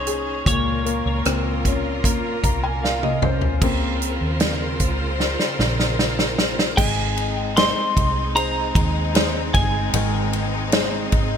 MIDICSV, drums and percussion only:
0, 0, Header, 1, 2, 480
1, 0, Start_track
1, 0, Key_signature, -4, "major"
1, 0, Tempo, 789474
1, 282, Time_signature, 4, 2, 24, 8
1, 6915, End_track
2, 0, Start_track
2, 0, Title_t, "Drums"
2, 40, Note_on_c, 9, 42, 66
2, 101, Note_off_c, 9, 42, 0
2, 282, Note_on_c, 9, 36, 94
2, 285, Note_on_c, 9, 42, 83
2, 342, Note_off_c, 9, 36, 0
2, 346, Note_off_c, 9, 42, 0
2, 524, Note_on_c, 9, 42, 58
2, 585, Note_off_c, 9, 42, 0
2, 761, Note_on_c, 9, 42, 69
2, 767, Note_on_c, 9, 37, 98
2, 822, Note_off_c, 9, 42, 0
2, 828, Note_off_c, 9, 37, 0
2, 1004, Note_on_c, 9, 36, 70
2, 1004, Note_on_c, 9, 42, 62
2, 1064, Note_off_c, 9, 36, 0
2, 1064, Note_off_c, 9, 42, 0
2, 1240, Note_on_c, 9, 36, 83
2, 1245, Note_on_c, 9, 42, 88
2, 1301, Note_off_c, 9, 36, 0
2, 1306, Note_off_c, 9, 42, 0
2, 1481, Note_on_c, 9, 36, 84
2, 1482, Note_on_c, 9, 42, 66
2, 1542, Note_off_c, 9, 36, 0
2, 1543, Note_off_c, 9, 42, 0
2, 1730, Note_on_c, 9, 38, 50
2, 1791, Note_off_c, 9, 38, 0
2, 1842, Note_on_c, 9, 48, 58
2, 1903, Note_off_c, 9, 48, 0
2, 1960, Note_on_c, 9, 45, 78
2, 2020, Note_off_c, 9, 45, 0
2, 2076, Note_on_c, 9, 43, 82
2, 2136, Note_off_c, 9, 43, 0
2, 2199, Note_on_c, 9, 36, 95
2, 2199, Note_on_c, 9, 49, 88
2, 2260, Note_off_c, 9, 36, 0
2, 2260, Note_off_c, 9, 49, 0
2, 2442, Note_on_c, 9, 42, 62
2, 2503, Note_off_c, 9, 42, 0
2, 2674, Note_on_c, 9, 42, 70
2, 2680, Note_on_c, 9, 38, 112
2, 2735, Note_off_c, 9, 42, 0
2, 2741, Note_off_c, 9, 38, 0
2, 2916, Note_on_c, 9, 42, 62
2, 2919, Note_on_c, 9, 36, 69
2, 2977, Note_off_c, 9, 42, 0
2, 2980, Note_off_c, 9, 36, 0
2, 3162, Note_on_c, 9, 38, 55
2, 3223, Note_off_c, 9, 38, 0
2, 3280, Note_on_c, 9, 38, 51
2, 3341, Note_off_c, 9, 38, 0
2, 3404, Note_on_c, 9, 38, 66
2, 3465, Note_off_c, 9, 38, 0
2, 3524, Note_on_c, 9, 38, 61
2, 3584, Note_off_c, 9, 38, 0
2, 3643, Note_on_c, 9, 38, 79
2, 3704, Note_off_c, 9, 38, 0
2, 3763, Note_on_c, 9, 38, 74
2, 3824, Note_off_c, 9, 38, 0
2, 3882, Note_on_c, 9, 38, 91
2, 3943, Note_off_c, 9, 38, 0
2, 4008, Note_on_c, 9, 38, 83
2, 4069, Note_off_c, 9, 38, 0
2, 4121, Note_on_c, 9, 36, 109
2, 4123, Note_on_c, 9, 49, 98
2, 4182, Note_off_c, 9, 36, 0
2, 4184, Note_off_c, 9, 49, 0
2, 4362, Note_on_c, 9, 51, 52
2, 4423, Note_off_c, 9, 51, 0
2, 4602, Note_on_c, 9, 51, 68
2, 4608, Note_on_c, 9, 38, 116
2, 4663, Note_off_c, 9, 51, 0
2, 4669, Note_off_c, 9, 38, 0
2, 4844, Note_on_c, 9, 36, 77
2, 4847, Note_on_c, 9, 51, 58
2, 4905, Note_off_c, 9, 36, 0
2, 4907, Note_off_c, 9, 51, 0
2, 5085, Note_on_c, 9, 51, 81
2, 5146, Note_off_c, 9, 51, 0
2, 5322, Note_on_c, 9, 36, 94
2, 5326, Note_on_c, 9, 51, 60
2, 5383, Note_off_c, 9, 36, 0
2, 5387, Note_off_c, 9, 51, 0
2, 5563, Note_on_c, 9, 51, 75
2, 5572, Note_on_c, 9, 38, 111
2, 5624, Note_off_c, 9, 51, 0
2, 5632, Note_off_c, 9, 38, 0
2, 5802, Note_on_c, 9, 51, 62
2, 5803, Note_on_c, 9, 36, 91
2, 5863, Note_off_c, 9, 36, 0
2, 5863, Note_off_c, 9, 51, 0
2, 6040, Note_on_c, 9, 51, 80
2, 6101, Note_off_c, 9, 51, 0
2, 6282, Note_on_c, 9, 51, 54
2, 6342, Note_off_c, 9, 51, 0
2, 6519, Note_on_c, 9, 51, 67
2, 6525, Note_on_c, 9, 38, 114
2, 6580, Note_off_c, 9, 51, 0
2, 6585, Note_off_c, 9, 38, 0
2, 6761, Note_on_c, 9, 51, 57
2, 6764, Note_on_c, 9, 36, 82
2, 6822, Note_off_c, 9, 51, 0
2, 6825, Note_off_c, 9, 36, 0
2, 6915, End_track
0, 0, End_of_file